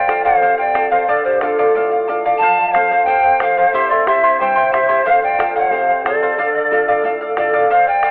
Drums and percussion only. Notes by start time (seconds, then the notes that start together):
0.09 bombo rim
0.26 bombo low
0.42 bombo low
0.75 bombo rim
0.91 bombo low
1.08 bombo low
1.41 bombo rim
1.58 bombo low
1.75 bombo low
2.25 bombo low
2.41 bombo low
2.75 bombo rim
2.91 bombo low
3.07 bombo low
3.40 bombo rim
3.57 bombo low
3.73 bombo low
4.07 bombo rim
4.24 bombo low
4.41 bombo low
4.74 bombo rim
4.90 bombo low
5.07 bombo low
5.40 bombo rim
5.56 bombo low
5.73 bombo low
6.06 bombo rim
6.22 bombo low
6.40 bombo low
6.73 bombo low
6.89 bombo low
7.05 bombo low
7.37 bombo rim
7.54 bombo low
7.70 bombo low
8.03 bombo rim